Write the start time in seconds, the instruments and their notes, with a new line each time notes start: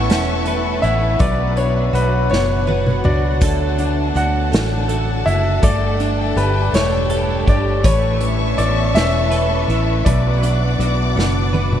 Already playing: steel-string acoustic guitar E3 B3, clean electric guitar A3 E4 B4, string section B4 E5 A5 C#6, grand piano F#5
0.09 fingered electric bass E1, steel-string acoustic guitar C#4, clean electric guitar C#4, snare, closed hi-hat
0.46 steel-string acoustic guitar A4, clean electric guitar B4, closed hi-hat
0.82 fingered electric bass A1, steel-string acoustic guitar C#4, clean electric guitar E4, grand piano E5, closed hi-hat
1.19 fingered electric bass B1, clean electric guitar B2 B4, steel-string acoustic guitar F#3, string section D4 F#5, grand piano D5, kick, closed hi-hat
1.56 steel-string acoustic guitar D4, clean electric guitar D4, grand piano C#5, closed hi-hat
1.93 fingered electric bass B1, steel-string acoustic guitar B3, clean electric guitar F#4, grand piano B4, closed hi-hat
2.30 fingered electric bass F#1, clean electric guitar B3, steel-string acoustic guitar D4, grand piano C#5, snare
2.67 steel-string acoustic guitar F#4, clean electric guitar B4, high tom
2.87 mid tom
3.04 fingered electric bass C#2, steel-string acoustic guitar D4, clean electric guitar F#4, grand piano D5, mid tom
3.41 fingered electric bass D2, clean electric guitar D3 A4, steel-string acoustic guitar A3, string section A4 A5, kick, closed hi-hat
3.78 steel-string acoustic guitar D4, clean electric guitar D4, closed hi-hat
4.15 fingered electric bass D2, steel-string acoustic guitar A3, clean electric guitar F#4, grand piano F#5, closed hi-hat
4.52 fingered electric bass A1, clean electric guitar A3, steel-string acoustic guitar D4, snare, closed hi-hat
4.88 steel-string acoustic guitar F#4, clean electric guitar A4, closed hi-hat
5.25 fingered electric bass F#1, steel-string acoustic guitar D4, clean electric guitar E4, grand piano E5, closed hi-hat
5.44 clean electric guitar F#4
5.62 fingered electric bass G1, clean electric guitar G2 A4, steel-string acoustic guitar A3, grand piano D5, string section G5, kick, closed hi-hat
6.00 steel-string acoustic guitar D4, clean electric guitar D4, closed hi-hat
6.36 fingered electric bass G1, steel-string acoustic guitar A3, clean electric guitar G4, grand piano B4, closed hi-hat
6.73 fingered electric bass E1, clean electric guitar A3, steel-string acoustic guitar D4, grand piano C#5, snare, closed hi-hat
7.10 steel-string acoustic guitar G4, clean electric guitar A4, closed hi-hat
7.46 fingered electric bass G1, steel-string acoustic guitar D4, clean electric guitar G4, grand piano D5, kick, closed hi-hat
7.83 fingered electric bass A1, steel-string acoustic guitar E3, clean electric guitar A3 B4, string section B4 E5 A5 C#6, grand piano C#5, kick, closed hi-hat
8.21 steel-string acoustic guitar C#4, closed hi-hat
8.58 fingered electric bass A1, steel-string acoustic guitar B3, clean electric guitar E4, grand piano D5, closed hi-hat
8.94 fingered electric bass E1, clean electric guitar C#4, steel-string acoustic guitar C#4, grand piano E5, snare, closed hi-hat
9.31 steel-string acoustic guitar A4, clean electric guitar B4, closed hi-hat
9.68 fingered electric bass A1, steel-string acoustic guitar C#4, clean electric guitar E4, closed hi-hat
10.05 fingered electric bass B1, clean electric guitar B2 B4, steel-string acoustic guitar F#3, grand piano D5, string section D5 F#5 D6, kick, closed hi-hat
10.42 clean electric guitar D4, steel-string acoustic guitar D4, closed hi-hat
10.79 fingered electric bass B1, steel-string acoustic guitar B3, clean electric guitar F#4, closed hi-hat
11.16 fingered electric bass F#1, clean electric guitar B3, steel-string acoustic guitar D4, snare
11.53 steel-string acoustic guitar F#4, clean electric guitar B4, high tom
11.72 mid tom